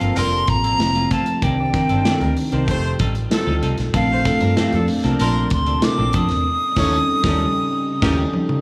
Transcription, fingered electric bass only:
0.01 G1
0.16 F1
0.48 A1
0.79 F1
1.42 C2
1.89 G1
2.21 D2
2.52 C2
2.68 F1
3.00 A1
3.47 D2
3.62 C2
3.78 B1
3.94 A#1
4.41 G2
4.73 F2
5.04 C2
5.20 A#1
5.51 D2
5.98 A#1
6.14 F2
6.30 E2
6.77 D#2
7.24 D#2
8.02 D#2

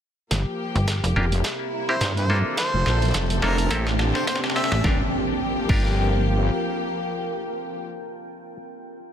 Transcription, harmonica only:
1.89 E4 C5
2.17 C5
2.58 C5
3.42 A#4
4.15 C5
4.28 C5
4.56 C5 E5

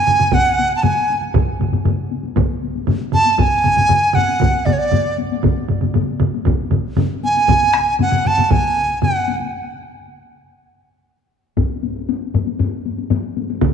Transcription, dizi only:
Already playing: G#5
0.34 F#5
0.76 A5
0.83 G#5
3.14 A5
3.33 A5
3.40 G#5
4.15 F#5
4.65 D5
4.73 C#5
4.78 D5
7.24 G#5
8.02 F#5
8.27 A5
8.44 A5
8.51 G#5
9.03 F#5

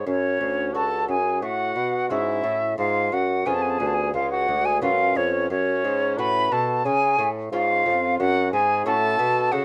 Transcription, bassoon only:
0.06 F#2
0.40 D2
0.74 C#2
1.08 F#2
1.43 A2
1.76 B2
2.11 G#2
2.44 A2
2.78 G#2
3.12 F#2
3.46 F2
3.80 D2
4.14 C#2
4.49 D2
4.82 F#2
5.16 F2
5.50 F#2
5.84 G#2
6.18 A2
6.51 B2
6.85 C#3
7.18 A2
7.52 G#2
7.86 F2
8.19 F#2
8.53 G#2
8.86 A2
9.19 B2
9.52 C#3

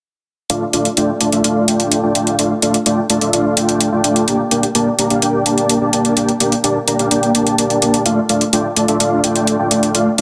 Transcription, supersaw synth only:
0.50 A3 D4 F4 D5 F5
0.73 A3 D4 F4 D5 F5
0.97 A3 D4 F4 D5 G5
1.21 A3 D4 F4 D5 A5
1.32 A3 D4 F4 D5 E5
1.44 A3 D4 F4 D5 F5
1.68 A3 D4 F4 G5
2.03 A3 D4 F4 D5 G5
2.15 A3 D4 F4 D5 G5
2.39 A3 D4 F4 D5 F5
2.62 A3 D4 F4 D5 F5
2.86 A3 D4 F4 D5 G5
3.10 A3 D4 F4 D5 A5
3.21 A3 D4 F4 D5 E5
3.33 A3 D4 F4 D5 F5
3.57 A3 D4 F4 D5 G5
3.92 A3 D4 F4 D5 G5
4.04 A3 D4 F4 D5 G5
4.28 A#3 D4 G4 D5 G5
4.51 A#3 D4 G4 D5 G5
4.75 A#3 D4 G4 D5 A5
4.99 A#3 D4 G4 D5 A#5
5.10 A#3 D4 G4 D5 F5
5.22 A#3 D4 G4 D5 G5
5.46 A#3 D4 G4 D5 A5
5.81 A#3 D4 G4 D5 A5
5.93 A#3 D4 G4 D5 A5
6.17 A#3 D4 G4 D5 G5
6.40 A#3 D4 G4 D5 G5
6.64 A#3 D4 G4 D5 A5
6.87 A#3 D4 G4 D5 A#5
6.99 A#3 D4 G4 D5 F5
7.11 A#3 D4 G4 D5 G5
7.35 A#3 D4 G4 D5 A5
7.58 A#3 D4 G4 D5 A5
7.82 A#3 D4 G4 D5 A5
8.06 A3 D4 F4 D5 F5
8.29 A3 D4 F4 D5 F5
8.53 A3 D4 F4 D5 G5
8.76 A3 D4 F4 D5 A5
8.88 A3 D4 F4 D5 E5
9.00 A3 D4 F4 D5 F5
9.24 A3 D4 F4 D5 G5
9.59 A3 D4 F4 D5 G5
9.71 A3 D4 F4 D5 G5
9.95 A3 D4 F4 D5 F5

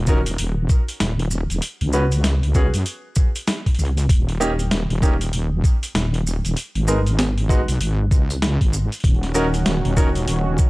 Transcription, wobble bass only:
Already playing: D#1
0.39 D#1
1.00 D#1
1.50 D#1
1.81 C#2
2.74 F#2
3.78 C#2
4.09 D#1
4.71 D#1
4.90 D#1
5.33 D#1
5.94 D#1
6.45 D#1
6.75 G#1
7.68 B1
7.80 G#1
8.11 C#2
8.61 G#1
9.04 D#1
9.66 D#1
9.85 D#1
10.27 D#1

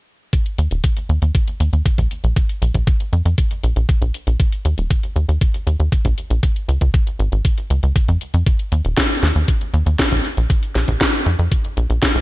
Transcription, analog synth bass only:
0.58 D#2
0.71 D#1
1.09 D#2
1.22 D#2
1.60 D#2
1.73 D#2
1.98 A#1
2.24 A#1
2.62 A#1
2.75 A#1
3.13 F2
3.25 F2
3.64 A#1
3.76 A#1
4.02 A#1
4.27 A#1
4.65 D#2
4.78 D#1
5.16 D#2
5.29 D#2
5.67 D#2
5.80 D#2
6.05 A#1
6.30 A#1
6.68 C#2
6.81 C#2
7.19 G#1
7.32 G#1
7.70 C#2
7.83 C#2
8.08 F2
8.34 F2
8.72 D#2
8.85 D#1
9.23 D#2
9.35 D#2
9.74 D#2
9.86 D#2
10.12 A#1
10.37 A#1
10.75 A#1
10.88 A#1
11.26 F2
11.39 F2
11.77 A#1
11.90 A#1
12.15 A#1

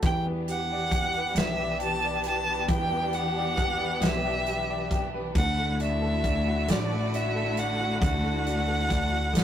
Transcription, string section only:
0.02 E3 B3 D4 G4
5.34 D3 A3 E4 F#4

